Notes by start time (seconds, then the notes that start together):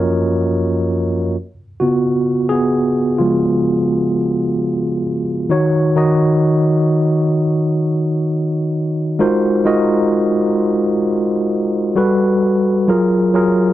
Already playing: F#2 F3 A#3 C#4 F4 F#4 A#4 C#5 D#5
1.80 C#3 B3 F4 F#4
2.49 B3 G#4
3.18 C#3 F3 G#3 B3 F4
5.50 D#3 D#4 F#4 C#5
5.96 D#3 D#4 F#4 D#5
9.19 G#3 D#4 F4 F#4 A#4 C5
9.65 G#3 D#4 F4 F#4 A#4 D#5
11.96 G3 F#4 A4 B4
12.88 F#3 F4 G#4 A#4
13.34 F#3 F4 G#4 A#4